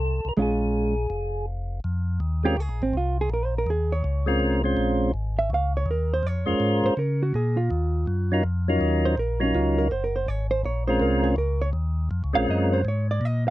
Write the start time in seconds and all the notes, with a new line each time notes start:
Already playing: C2 A4
0.25 C2 A#4
0.37 A#1 G#3 C#4 F4
0.42 G#4
1.10 F1
1.84 F2
2.20 D#2
2.44 G#3 C4 C#4 F4 G4 A#4
2.57 C#2 G#4
2.69 A#1
2.82 G#1 C4
2.93 C2 F4
3.21 G#4
3.30 A#1 A#4
3.45 C5
3.58 A#4
3.67 D#2 G#4
3.92 C#5
4.04 C#2
4.26 G#3 C4 C#4 F4 A#4
4.40 C2
4.63 G#3 C4 C#4 F4 C5
4.77 A#1
5.14 G#1
5.39 E5
5.50 C#2
5.54 F5
5.77 C#5
5.86 D#2
5.91 A#4
6.14 C5
6.23 F2 C#5
6.46 F2 G#3 C#4 F4 A#4 C5
6.60 G#2
6.84 G#2 C5
6.97 C#3 A#4
7.23 F#4
7.34 A#2 G#4
7.57 F4
7.71 D#2
8.07 F#2
8.32 F#3 C#4 D#4 F4 A#4
8.44 F2
8.68 F#3 C#4 D#4 F4 A#4
8.81 D#2
9.05 C5
9.18 A#1 A#4
9.40 F#3 C#4 D#4 F4 A#4
9.55 C#2 F4
9.78 A#4
9.91 F#1 C5
10.04 A#4
10.16 C5
10.28 G#1 C#5
10.51 C5
10.64 A#1 C#5
10.87 G#3 C4 C#4 F4 A#4 C5
11.00 C2 A#4
11.24 G#4
11.36 C#2 A#4
11.62 C#5
11.73 D#2
12.11 F2
12.24 C#2
12.33 A#1 G#3 C4 C#4 F4 A#4 F5
12.49 F#2 D#5
12.73 C5
12.85 G#2 C#5
13.11 D5
13.21 A#2
13.25 D#5